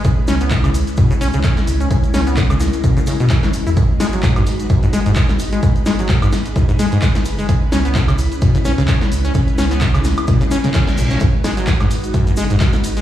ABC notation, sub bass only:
X:1
M:4/4
L:1/16
Q:"Swing 16ths" 1/4=129
K:C#dor
V:1 name="Sub bass" clef=bass
C,, z C,,4- C,, z F,, z B,,, C,, z2 C,,2 | C,, z C,,4- C,, z G,,, z4 z G,,, E,, | G,,, z G,,,4- G,,, z C,, z F,,, G,,, z2 G,,,2 | G,,, z G,,,4- G,,, z G,, z4 z F,,,2 |
C,, z C,,4- C,, z F,, z B,,, C,, z2 C,,2 | C,, z C,,4- C,, z G,,, z4 z B,,,2 | G,,, z G,,,4- G,,, z C,, z F,,, G,,, z2 G,,,2 |]